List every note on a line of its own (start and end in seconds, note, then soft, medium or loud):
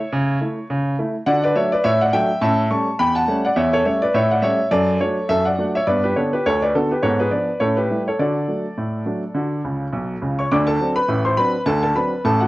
0.00 0.66 C#5 medium
0.00 0.47 E5 medium
0.12 0.37 C#3 medium
0.41 0.56 A3 soft
0.41 0.57 E4 soft
0.70 0.94 C#3 medium
0.99 1.14 A3 soft
0.99 1.15 E4 medium
1.26 1.51 D3 medium
1.26 1.44 F#4 soft
1.26 1.42 D5 medium
1.26 1.42 F#5 medium
1.44 1.56 B4 medium
1.44 1.56 D5 medium
1.56 1.72 F#3 soft
1.56 1.72 A3 soft
1.56 1.72 D4 soft
1.56 1.71 C#5 medium
1.56 1.71 E5 medium
1.72 1.85 B4 medium
1.72 1.85 D5 medium
1.84 2.09 A2 medium
1.84 1.99 C#5 medium
1.84 2.00 E5 loud
2.02 2.14 D5 medium
2.02 2.14 F#5 medium
2.13 2.29 F#3 medium
2.13 2.29 A3 soft
2.13 2.30 D4 soft
2.13 2.41 E5 medium
2.13 2.41 G5 loud
2.42 2.66 A2 medium
2.42 2.59 C#4 medium
2.42 2.69 E5 medium
2.42 2.65 A5 medium
2.71 2.87 G3 soft
2.71 2.87 A3 soft
2.71 2.87 C#4 soft
2.71 2.98 A5 medium
2.71 2.94 C#6 medium
2.99 3.24 E2 medium
2.99 3.14 G5 medium
2.99 3.15 B5 loud
3.15 3.42 F#5 medium
3.15 3.38 A5 medium
3.28 3.44 G3 soft
3.28 3.44 A3 medium
3.28 3.44 C#4 medium
3.45 3.57 D5 medium
3.45 3.57 F#5 medium
3.56 3.81 E2 medium
3.56 3.72 C#5 medium
3.56 3.72 E5 medium
3.73 3.86 A4 medium
3.73 3.85 C#5 medium
3.85 4.01 G3 soft
3.85 4.02 A3 soft
3.85 4.02 C#4 soft
3.85 4.01 C#5 medium
3.85 4.01 E5 medium
4.02 4.15 B4 medium
4.02 4.15 D5 medium
4.14 4.39 A2 medium
4.14 4.30 C#5 medium
4.14 4.30 E5 medium
4.31 4.44 D5 medium
4.31 4.44 F#5 medium
4.42 4.58 G3 soft
4.42 4.59 A3 soft
4.42 4.59 C#4 soft
4.42 4.70 C#5 medium
4.42 4.66 E5 medium
4.71 4.96 F#2 medium
4.71 4.99 A4 medium
4.71 4.99 D5 medium
5.00 5.16 F#3 soft
5.00 5.17 A3 soft
5.00 5.17 D4 soft
5.00 5.28 A4 medium
5.00 5.28 C#5 medium
5.29 5.54 F#2 medium
5.29 5.45 A4 medium
5.29 5.45 E5 loud
5.45 5.73 D5 medium
5.45 5.68 F#5 medium
5.58 5.74 F#3 soft
5.58 5.75 A3 soft
5.58 5.75 D4 medium
5.75 5.88 C#5 medium
5.75 5.88 E5 medium
5.87 6.12 G2 medium
5.87 6.05 B3 soft
5.87 6.02 B4 medium
5.87 6.03 D5 medium
6.04 6.16 G4 medium
6.04 6.17 B4 medium
6.16 6.32 D3 soft
6.16 6.32 B3 soft
6.16 6.33 D4 soft
6.16 6.32 A4 soft
6.16 6.32 C#5 medium
6.33 6.46 G4 medium
6.33 6.46 B4 medium
6.46 6.70 D2 medium
6.46 6.61 A4 medium
6.46 6.61 C#5 medium
6.62 6.75 B4 medium
6.62 6.75 D5 medium
6.75 6.91 D3 soft
6.75 6.91 B3 soft
6.75 6.92 D4 soft
6.75 6.90 F#4 medium
6.75 6.90 A4 medium
6.91 7.03 G4 soft
6.91 7.04 B4 medium
7.03 7.27 G#2 medium
7.03 7.20 B3 soft
7.03 7.18 A4 medium
7.03 7.19 C#5 medium
7.20 7.32 G#4 soft
7.20 7.31 B4 medium
7.31 7.47 F3 soft
7.31 7.48 B3 soft
7.31 7.48 D4 soft
7.31 7.59 B4 soft
7.31 7.59 D5 medium
7.60 7.85 A2 medium
7.60 7.78 C#4 soft
7.60 7.76 A4 medium
7.60 7.76 C#5 medium
7.77 8.04 G4 soft
7.77 8.00 B4 medium
7.90 8.06 G3 soft
7.90 8.06 A3 soft
7.90 8.07 E4 soft
8.08 8.19 A4 medium
8.08 8.20 C#5 medium
8.19 8.44 D3 medium
8.19 8.37 F#4 soft
8.19 10.19 A4 medium
8.19 9.82 D5 medium
8.48 8.64 F#3 soft
8.48 8.65 A3 soft
8.48 8.65 D4 soft
8.77 9.02 A2 soft
9.06 9.22 F#3 soft
9.06 9.22 A3 soft
9.06 9.23 D4 soft
9.34 9.60 D3 medium
9.34 9.52 F#4 soft
9.64 9.86 C#2 soft
9.64 9.86 C#3 soft
9.93 10.15 B1 medium
9.93 10.15 B2 soft
10.22 10.44 C#2 soft
10.22 10.44 C#3 medium
10.39 10.51 C#5 medium
10.39 10.52 C#6 medium
10.52 10.76 D2 medium
10.52 10.76 D3 medium
10.52 10.67 D5 medium
10.52 10.67 D6 medium
10.67 10.94 A4 medium
10.67 10.90 A5 medium
10.80 10.96 F#3 soft
10.80 10.97 C4 soft
10.80 10.97 D4 soft
10.96 11.23 B4 medium
10.96 11.23 B5 medium
11.08 11.33 A1 medium
11.08 11.33 A2 medium
11.25 11.38 C5 medium
11.25 11.38 C6 medium
11.37 11.53 F#3 soft
11.37 11.54 C4 soft
11.37 11.54 D4 soft
11.37 11.65 B4 medium
11.37 11.61 B5 medium
11.66 11.91 D2 medium
11.66 11.91 D3 medium
11.66 11.82 A4 medium
11.66 11.81 A5 loud
11.83 11.96 A4 medium
11.83 11.96 A5 medium
11.96 12.12 F#3 soft
11.96 12.12 C4 soft
11.96 12.12 D4 soft
11.96 12.23 B4 medium
11.96 12.23 B5 medium
12.24 12.48 A1 medium
12.24 12.48 A2 medium
12.24 12.40 A4 medium
12.24 12.40 A5 medium
12.40 12.48 F#4 medium
12.40 12.48 F#5 medium